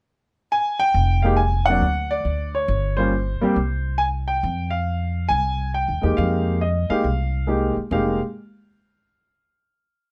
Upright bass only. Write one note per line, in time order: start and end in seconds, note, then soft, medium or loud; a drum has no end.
0.94 1.78 F1 medium
1.81 2.22 D2 medium
2.25 2.66 D2 medium
2.68 3.37 G1 medium
3.41 muted upright bass stroke soft
3.56 4.39 C2 medium
4.43 5.26 F2 medium
5.30 5.84 C2 medium
5.88 6.02 D#2 medium
6.03 6.16 E2 medium
6.18 6.86 F2 medium
6.90 muted upright bass stroke soft
7.04 7.73 C2 medium
7.77 muted upright bass stroke soft
7.91 8.18 F1 medium